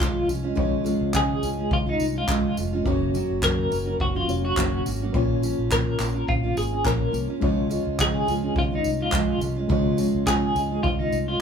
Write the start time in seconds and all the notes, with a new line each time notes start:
Already playing: G#3 C#4 F4 C#5
0.00 C#2 C#3 F3 G#3 C#4 F4, kick, clap
0.27 C2 F3 G#3 C#4 F4, tambourine
0.43 G#3 C#4 F4
0.55 C#2 C#3 F3 G#3 C#4 F4, kick
0.60 C#5
0.84 F3 G#3 C#4 F4, tambourine
1.01 C#2
1.13 C#3 F3 G#3 C#4 F4 G#4, kick, clap
1.42 C#2 F3 G#3 C#4 F4, tambourine
1.58 G#3 C#4 F4
1.71 C#2 F4, kick
1.86 G#3 C#4 D#4 F4
2.00 C2, tambourine
2.15 G#3 C#4 F4
2.28 C#2 C#3 F3 G#3 C#4 F4, kick, clap
2.57 F1 F3 G#3 C#4 F4, tambourine
2.73 G#3 C#4 F4
2.84 F#1 F#2 C#3 F#3 A#3 C#4 F#4 C#5, kick
3.14 F#3 A#3 C#4 F#4, tambourine
3.30 F#1
3.42 F#2 C#3 F#3 A#3 C#4 F#4 A#4, kick, clap
3.70 F#1 F#3 A#3 C#4 F#4, tambourine
3.86 F#3 A#3 C#4 F#4
4.00 F#1 F#4, kick
4.15 F#3 A#3 C#4 F4 F#4
4.28 F1 A#3 C#4 F#4 C#5, tambourine
4.44 F#3 A#3 C#4 F#4
4.56 F#1 F#2 C#3 F#3 A#3 C#4 F#4, kick, clap
4.86 G#1 F#3 A#3 C#4 F#4, tambourine
5.02 F#3 A#3 C#4 F#4
5.13 A#1 A#2 F3 A#3 C#4 F4 C#5, kick
5.42 F3 A#3 C#4 F4, tambourine
5.59 A#1
5.71 A#2 F3 A#3 C#4 F4 A#4, kick, clap
5.99 A#1 F3 A#3 C#4 F4, clap, tambourine
6.15 A#3 C#4 F4
6.28 A#1 F4, kick
6.43 A#3 C#4 F4
6.57 G#1 G#4, tambourine
6.71 A#3 C#4 F4
6.84 A#1 A#2 F3 A#3 C#4 F4 A#4 C#5, kick, clap
7.11 C2 F3 A#3 C#4 F4, tambourine
7.28 A#3 C#4 F4
7.40 C#2 C#3 F3 G#3 C#4 F4 C#5, kick
7.70 F3 G#3 C#4 F4, tambourine
7.87 C#2
7.99 C#3 F3 G#3 C#4 F4 G#4, kick, clap
8.26 C#2 F3 G#3 C#4 F4, tambourine
8.43 G#3 C#4 F4
8.56 C#2 F4, kick
8.71 G#3 C#4 F4
8.75 D#4
8.84 C2, tambourine
8.99 G#3 C#4 F4
9.12 C#2 C#3 F3 G#3 C#4 F4, kick, clap
9.40 C2 F3 G#3 C#4 F4, tambourine
9.56 G#3 C#4 F4
9.68 C#2 C#3 F3 G#3 C#4 F4, kick
9.72 C#5
9.97 F3 G#3 C#4 F4, tambourine
10.14 C#2
10.26 C#3 F3 G#3 C#4 F4 G#4, kick, clap
10.55 C#2 F3 G#3 C#4 F4, tambourine
10.71 G#3 C#4 F4
10.83 C#2 F4, kick
10.99 G#3 C#4 D#4 F4
11.12 C2, tambourine
11.28 G#3 C#4 F4